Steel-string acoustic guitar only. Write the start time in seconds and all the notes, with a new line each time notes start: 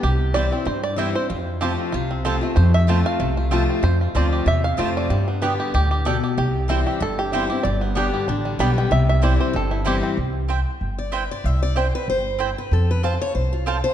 0.04 C3
0.35 E3 G3 C4 E4
0.51 C4 E4
0.65 G2
0.96 E3 G3 C4 E4
1.15 C4 E4
1.30 F2
1.62 F3 A3 C4 F4
1.94 C3
2.25 F3 A3 C4 F4
2.41 C4 F4
2.57 F2
2.87 F3 A3 C4 F4
3.20 C3
3.51 F3 A3 C4 F4
3.83 F2
4.15 F3 A3 C4 F4
4.46 C3
4.77 F3 A3 C4 F4
5.10 G2
5.42 D3 G3 B3 G4
5.74 A2
6.05 B2
6.38 C3
6.68 E3 G3 C4 E4
7.00 G2
7.33 E3 G3 C4 E4
7.50 C4 E4
7.65 G2
7.95 D3 G3 B3 G4
8.29 D3
8.59 D3 G3 B3 G4
8.91 C3
9.22 E3 G3 C4 E4
9.53 G2
9.86 E3 G3 C4 E4
10.98 D5
11.14 B4
11.31 D5
11.45 E5
11.63 D5
11.77 C5
11.95 B4
12.10 C5
12.58 B4
12.73 A4
12.91 B4
13.04 C5
13.21 C#5
13.35 C5
13.53 F4
13.68 A4
13.84 C5